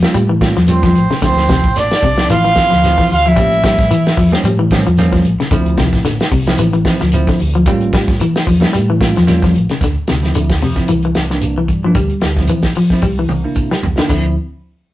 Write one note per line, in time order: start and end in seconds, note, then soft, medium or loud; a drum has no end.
0.02 0.21 G3 medium
0.02 0.21 A#3 medium
0.02 0.21 C#4 medium
0.02 0.21 F4 loud
0.02 snare medium
0.02 closed hi-hat soft
0.14 0.53 A2 medium
0.14 0.26 G3 medium
0.14 closed hi-hat medium
0.14 shekere loud
0.29 0.51 E3 medium
0.41 0.55 G3 medium
0.41 0.55 A#3 medium
0.41 0.55 C#4 medium
0.41 0.55 F4 loud
0.41 kick medium
0.41 snare medium
0.41 closed hi-hat medium
0.41 shekere soft
0.56 0.92 E2 loud
0.56 0.78 F3 medium
0.56 snare soft
0.56 closed hi-hat soft
0.68 0.94 G3 medium
0.68 0.94 A#3 medium
0.68 1.18 C4 medium
0.68 0.94 C#4 medium
0.68 0.94 F4 medium
0.68 1.19 C5 medium
0.68 closed hi-hat medium
0.68 shekere medium
0.83 1.05 F3 medium
0.83 kick medium
0.83 snare soft
0.83 closed hi-hat soft
0.95 1.09 A1 medium
0.95 closed hi-hat medium
0.95 shekere soft
1.10 1.20 C#3 medium
1.10 muted fingered electric bass stroke soft
1.10 snare soft
1.10 closed hi-hat soft
1.22 1.60 D2 medium
1.22 1.43 D3 medium
1.22 1.68 F3 medium
1.22 1.67 C4 medium
1.22 1.78 C4 medium
1.22 1.68 E4 medium
1.22 1.81 C5 medium
1.22 kick medium
1.22 snare soft
1.22 closed hi-hat medium
1.22 shekere loud
1.37 snare soft
1.37 closed hi-hat soft
1.49 1.70 C3 medium
1.49 kick medium
1.49 snare medium
1.49 closed hi-hat medium
1.49 shekere soft
1.64 1.89 A1 medium
1.64 kick medium
1.64 closed hi-hat soft
1.76 2.30 D4 medium
1.76 2.30 D5 loud
1.76 snare soft
1.76 closed hi-hat medium
1.76 shekere loud
1.91 snare medium
1.91 closed hi-hat soft
2.02 2.27 C2 medium
2.02 2.25 C3 medium
2.02 kick medium
2.02 open hi-hat medium
2.02 shekere soft
2.17 2.37 F3 medium
2.17 2.36 C4 medium
2.17 2.37 E4 medium
2.17 snare medium
2.17 closed hi-hat soft
2.29 2.55 A1 medium
2.29 2.42 E3 medium
2.29 3.07 F4 medium
2.29 3.07 F5 loud
2.29 closed hi-hat medium
2.29 shekere loud
2.44 2.66 E3 medium
2.44 closed hi-hat soft
2.55 2.72 F3 medium
2.55 2.71 C4 medium
2.55 2.71 E4 medium
2.55 kick medium
2.55 snare medium
2.55 closed hi-hat medium
2.55 shekere soft
2.70 2.97 D2 medium
2.70 2.92 F3 medium
2.70 snare soft
2.70 closed hi-hat soft
2.84 3.09 F3 medium
2.84 3.10 C4 medium
2.84 3.10 E4 medium
2.84 snare soft
2.84 closed hi-hat medium
2.84 shekere medium
2.98 3.19 E3 medium
2.98 muted fingered electric bass stroke soft
2.98 kick medium
2.98 snare soft
2.98 closed hi-hat soft
3.10 3.36 D2 loud
3.10 3.28 F4 medium
3.10 3.29 F5 loud
3.10 open hi-hat medium
3.10 shekere soft
3.26 3.35 F3 medium
3.26 4.33 E4 medium
3.26 4.34 E5 loud
3.26 closed hi-hat soft
3.36 3.75 A1 loud
3.36 3.84 F3 medium
3.36 3.58 G3 loud
3.36 3.84 G3 medium
3.36 3.84 A#3 medium
3.36 3.83 C#4 medium
3.36 kick loud
3.36 closed hi-hat medium
3.36 shekere medium
3.52 closed hi-hat soft
3.63 3.85 G3 medium
3.63 kick medium
3.63 snare medium
3.63 closed hi-hat medium
3.63 shekere soft
3.79 3.90 A1 medium
3.79 kick medium
3.79 snare soft
3.79 closed hi-hat soft
3.91 4.12 E3 medium
3.91 closed hi-hat medium
3.91 shekere loud
4.06 muted fingered electric bass stroke soft
4.06 snare medium
4.06 closed hi-hat soft
4.17 4.31 E2 loud
4.17 4.39 F3 medium
4.17 kick medium
4.17 open hi-hat medium
4.17 shekere soft
4.32 4.51 F3 medium
4.32 4.50 G3 medium
4.32 4.50 A#3 medium
4.32 4.51 C#4 loud
4.32 snare medium
4.32 closed hi-hat soft
4.43 4.83 A2 loud
4.43 4.57 G3 medium
4.43 closed hi-hat medium
4.43 shekere loud
4.59 4.80 E3 medium
4.71 4.86 F3 loud
4.71 4.86 G3 medium
4.71 4.86 A#3 medium
4.71 4.86 C#4 loud
4.71 kick medium
4.71 snare medium
4.71 closed hi-hat medium
4.71 shekere soft
4.86 5.22 E2 loud
4.86 5.08 F3 medium
4.86 closed hi-hat soft
4.98 5.24 F3 loud
4.98 5.24 G3 medium
4.98 5.24 A#3 loud
4.98 5.24 C#4 loud
4.98 snare soft
4.98 closed hi-hat medium
4.98 shekere medium
5.13 5.34 F3 medium
5.13 kick medium
5.13 snare soft
5.13 closed hi-hat soft
5.25 5.38 A1 medium
5.25 closed hi-hat medium
5.25 shekere soft
5.39 5.49 C#3 medium
5.39 muted fingered electric bass stroke soft
5.39 snare soft
5.39 closed hi-hat soft
5.51 5.90 D2 loud
5.51 5.73 D3 medium
5.51 5.98 F3 loud
5.51 5.98 C4 medium
5.51 5.98 E4 loud
5.51 kick loud
5.51 closed hi-hat medium
5.51 shekere loud
5.66 closed hi-hat soft
5.77 6.00 C3 medium
5.77 kick medium
5.77 snare medium
5.77 closed hi-hat medium
5.77 shekere soft
5.93 6.18 A1 medium
5.93 kick medium
5.93 snare soft
5.93 closed hi-hat soft
6.05 6.26 D3 medium
6.05 snare soft
6.05 closed hi-hat medium
6.05 shekere loud
6.20 snare medium
6.20 closed hi-hat soft
6.32 6.57 C2 loud
6.32 6.53 C3 medium
6.32 kick medium
6.32 open hi-hat medium
6.32 shekere soft
6.47 6.66 F3 medium
6.47 6.65 C4 medium
6.47 6.65 E4 loud
6.47 snare medium
6.47 closed hi-hat soft
6.58 6.83 A1 medium
6.58 6.71 E3 medium
6.58 closed hi-hat medium
6.58 shekere loud
6.73 6.95 E3 medium
6.73 closed hi-hat soft
6.85 7.01 F3 medium
6.85 7.01 C4 medium
6.85 7.01 E4 loud
6.85 kick medium
6.85 snare medium
6.85 closed hi-hat medium
6.85 shekere soft
7.00 7.26 D2 medium
7.00 7.22 F3 medium
7.00 snare soft
7.00 closed hi-hat soft
7.12 7.39 F3 loud
7.12 7.39 C4 medium
7.12 7.39 E4 loud
7.12 closed hi-hat medium
7.12 shekere medium
7.27 7.50 D3 medium
7.27 muted fingered electric bass stroke soft
7.27 kick medium
7.27 snare soft
7.27 closed hi-hat soft
7.39 7.65 D2 loud
7.39 open hi-hat medium
7.39 shekere soft
7.55 7.64 F3 medium
7.55 closed hi-hat soft
7.66 8.05 A1 loud
7.66 8.12 G3 loud
7.66 7.88 G3 medium
7.66 8.12 A#3 medium
7.66 8.12 C#4 medium
7.66 8.12 F4 loud
7.66 kick medium
7.66 closed hi-hat medium
7.66 shekere medium
7.81 closed hi-hat soft
7.93 8.15 G3 medium
7.93 kick medium
7.93 snare medium
7.93 closed hi-hat medium
7.93 shekere soft
8.08 8.19 A1 medium
8.08 kick medium
8.08 snare soft
8.08 closed hi-hat soft
8.20 8.42 E3 medium
8.20 closed hi-hat medium
8.20 shekere loud
8.35 muted fingered electric bass stroke soft
8.35 snare medium
8.35 closed hi-hat soft
8.47 8.61 E2 loud
8.47 8.68 F3 medium
8.47 kick medium
8.47 open hi-hat medium
8.47 shekere soft
8.60 8.80 G3 medium
8.60 8.79 A#3 medium
8.60 8.80 C#4 medium
8.60 8.80 E4 loud
8.60 snare medium
8.73 9.13 A2 loud
8.73 8.85 G3 medium
8.73 closed hi-hat medium
8.73 shekere loud
8.90 9.11 E3 medium
9.01 9.15 G3 medium
9.01 9.15 A#3 medium
9.01 9.15 C#4 medium
9.01 9.15 F4 loud
9.01 kick medium
9.01 snare medium
9.01 closed hi-hat medium
9.01 shekere soft
9.16 9.52 E2 loud
9.16 9.38 F3 medium
9.16 snare soft
9.16 closed hi-hat soft
9.27 9.53 G3 loud
9.27 9.53 A#3 medium
9.27 9.53 C#4 medium
9.27 9.53 F4 loud
9.27 snare soft
9.27 closed hi-hat medium
9.27 shekere medium
9.42 9.65 F3 medium
9.42 kick medium
9.42 snare soft
9.42 closed hi-hat soft
9.54 9.69 A1 medium
9.54 closed hi-hat medium
9.54 shekere soft
9.69 9.80 C#3 medium
9.69 muted fingered electric bass stroke soft
9.69 snare soft
9.69 closed hi-hat soft
9.81 9.95 D2 medium
9.81 10.04 D3 medium
9.81 kick medium
9.81 snare soft
9.81 closed hi-hat medium
9.81 shekere medium
10.07 10.33 D2 medium
10.07 10.30 C3 medium
10.07 snare medium
10.07 closed hi-hat medium
10.07 shekere soft
10.23 10.48 F3 medium
10.23 10.48 C4 medium
10.23 10.48 E4 medium
10.23 snare soft
10.23 closed hi-hat soft
10.35 10.62 D2 loud
10.35 10.56 D3 medium
10.35 closed hi-hat medium
10.35 shekere medium
10.50 kick medium
10.50 snare medium
10.50 closed hi-hat soft
10.62 10.76 F2 medium
10.62 10.83 C3 medium
10.62 open hi-hat medium
10.62 shekere soft
10.75 10.88 F3 medium
10.75 10.88 C4 medium
10.75 10.88 E4 loud
10.75 kick medium
10.75 snare soft
10.75 closed hi-hat soft
10.88 11.14 C2 loud
10.88 11.00 E3 medium
10.88 closed hi-hat medium
10.88 shekere medium
11.02 11.25 E3 medium
11.02 closed hi-hat soft
11.15 11.65 C2 medium
11.15 snare medium
11.15 closed hi-hat medium
11.15 shekere soft
11.30 11.56 E3 medium
11.30 11.56 A#3 medium
11.30 11.56 D4 medium
11.30 muted clean electric guitar stroke medium
11.30 snare soft
11.41 closed hi-hat medium
11.41 shekere medium
11.58 11.79 E3 medium
11.68 11.93 G2 medium
11.68 kick medium
11.68 closed hi-hat soft
11.68 shekere soft
11.84 11.97 E3 medium
11.84 11.94 F3 medium
11.84 11.97 A#3 medium
11.84 11.97 D4 loud
11.95 12.09 D2 medium
11.95 12.16 G3 medium
11.95 kick medium
11.95 closed hi-hat medium
11.95 shekere medium
12.10 closed hi-hat soft
12.21 12.47 D2 medium
12.21 12.43 G3 medium
12.21 snare medium
12.21 closed hi-hat medium
12.21 shekere soft
12.36 12.64 F3 medium
12.36 12.64 E4 medium
12.36 kick medium
12.36 snare soft
12.36 closed hi-hat soft
12.40 12.64 C4 medium
12.47 12.71 E3 medium
12.47 closed hi-hat medium
12.47 shekere medium
12.62 kick medium
12.62 snare medium
12.62 closed hi-hat soft
12.75 12.98 F3 medium
12.75 open hi-hat medium
12.75 shekere soft
12.90 13.04 F3 medium
12.90 13.04 C4 medium
12.90 13.04 E4 loud
12.90 kick medium
12.90 snare soft
13.02 13.27 C2 loud
13.02 13.15 G3 medium
13.02 kick medium
13.02 shekere medium
13.19 13.40 E3 medium
13.28 13.43 C2 loud
13.28 mid tom medium
13.28 shekere soft
13.44 13.70 A#3 medium
13.44 13.70 D4 medium
13.44 13.70 E4 medium
13.56 13.70 C3 medium
13.56 kick medium
13.56 shekere medium
13.71 13.93 G3 medium
13.71 snare medium
13.82 13.97 C2 medium
13.82 floor tom medium
13.82 shekere soft
13.98 14.08 D3 medium
13.98 14.10 A#3 medium
13.98 14.10 D4 medium
13.98 14.08 E4 medium
13.98 snare medium
14.09 14.35 D2 medium
14.09 14.26 D3 medium
14.09 14.35 F3 medium
14.09 14.35 C4 medium
14.09 14.35 E4 medium
14.09 kick medium
14.09 crash medium
14.09 shekere loud